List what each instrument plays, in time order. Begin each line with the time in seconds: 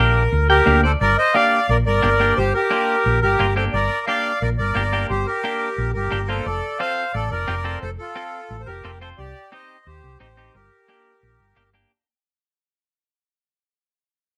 Already playing: accordion A#4
0.00 fingered electric bass A#1, clean electric guitar A#3 D4 G4
0.33 fingered electric bass D2
0.49 accordion G4 A#4, clean electric guitar G5
0.66 fingered electric bass D2, clean electric guitar A#3 D4 G4 F5
0.84 accordion A4 C5, clean electric guitar D5
1.01 fingered electric bass G1, accordion A#4 D5
1.18 accordion C5 D#5
1.34 clean electric guitar A#3 D4 G4, accordion D5 F5
1.69 fingered electric bass A#1, accordion A#4 D5
1.86 fingered electric bass G1, accordion A#4 D5
2.02 fingered electric bass G1, clean electric guitar A#3 D4 G4
2.20 clean electric guitar A#3 D4 G4
2.37 fingered electric bass G1, accordion G4 C5
2.54 accordion G4 A#4
2.70 clean electric guitar A#3 D4 F4
3.06 fingered electric bass A#1
3.22 fingered electric bass G1, accordion G4 A#4
3.39 fingered electric bass G1, clean electric guitar A#3 D4 F4
3.56 clean electric guitar A#3 D4 G4, accordion A4 C5
3.73 fingered electric bass G1, accordion A#4 D5
4.07 clean electric guitar A#3 D4 G4, accordion D5 F5
4.41 fingered electric bass A#1, accordion A#4 D5
4.58 fingered electric bass G1, accordion A#4 D5
4.75 fingered electric bass G1, clean electric guitar A#3 D4 G4
4.93 clean electric guitar A#3 D4 G4
5.09 fingered electric bass G1, accordion G4 C5
5.26 accordion G4 A#4
5.44 clean electric guitar A#3 D4 G4
5.78 fingered electric bass A#1
5.94 fingered electric bass G1, accordion G4 A#4
6.11 fingered electric bass G1, clean electric guitar A#3 D4 G4
6.28 clean electric guitar A#3 D4 F4, accordion A4 C5
6.45 fingered electric bass F1, accordion A4 D5
6.79 clean electric guitar C4 F4 A4, accordion C5 F5
7.13 fingered electric bass A1, accordion A4 D5
7.30 fingered electric bass F1, accordion A#4 D5
7.48 fingered electric bass F1, clean electric guitar C4 F4 G4
7.64 clean electric guitar C4 F4 A4
7.82 fingered electric bass F1, accordion A4 C5
7.98 accordion F4 A4
8.16 clean electric guitar C4 F4 A4
8.50 fingered electric bass A1
8.60 accordion C5
8.66 fingered electric bass F1, accordion G4 A#4
8.84 fingered electric bass F1, clean electric guitar C4 F4 A4
9.01 clean electric guitar C4 F4 C5, accordion A4 C5
9.17 fingered electric bass C2, accordion G4 D5
9.52 clean electric guitar C4 D#4 G4, accordion C5 D#5
9.86 fingered electric bass D#2, accordion G4 C5
10.04 fingered electric bass C2
10.20 fingered electric bass A1, clean electric guitar C4 D#4 G4, accordion G4 C5
10.37 clean electric guitar C4 D#4 G4
10.54 fingered electric bass G1, accordion G4 A#4
10.88 clean electric guitar A#3 D4 G4
11.23 fingered electric bass A#1
11.40 fingered electric bass G1
11.56 fingered electric bass G1, clean electric guitar A#3 D4 G4
11.74 clean electric guitar A#3 D4 G4